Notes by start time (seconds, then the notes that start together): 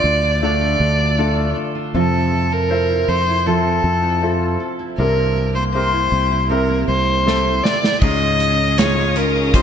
Already playing: A2 D3 A3 D4 F4 A4 C5 D5
0.03 D2 A4
0.23 F4
0.42 D3 A3 D4 F4 A4 D5
0.61 D4
0.80 D2 A4
0.99 D4
1.18 A3 D4 F4 A4
1.37 F4
1.56 A4
1.75 F4
1.94 F2 C3 F3 C4 E4 F4 A4
2.14 C4
2.32 A4
2.52 C4 A#4
2.70 C4 E4 F4 C5
2.90 E4
3.08 F2 A4 C5
3.28 E4
3.46 F3 C4 E4 F4 A4
3.65 C4
3.84 F2 A4
4.03 C4
4.22 C4 E4 F4 A4
4.41 E4
4.60 A4
4.79 E4
4.98 C2 G2 C3 C4 E4 G4 A#4
5.17 A#3
5.36 G4
5.55 A#3 C5
5.73 C4 E4 G4 A#4 C5
5.93 E4
6.12 C2 G4
6.31 E4
6.49 C3 C4 E4 G4 A#4
6.69 A#3
6.88 C2 G4 C5
7.07 A#3
7.25 C4 E4 G4 A4, snare
7.45 E4
7.63 G4 D5, snare
7.83 E4, snare
8.01 C#2 G#2 C#3 C#4 D#4 F4 G#4 D#5 F5 D#6, kick, crash
8.40 C#4, closed hi-hat
8.78 C#4 D#4 F4 G#4 C#5, snare, closed hi-hat
9.16 C#4 D#4 F4 G#4 A#4, closed hi-hat
9.54 C#4 D#4 F4 G4 G#4 C5, kick, closed hi-hat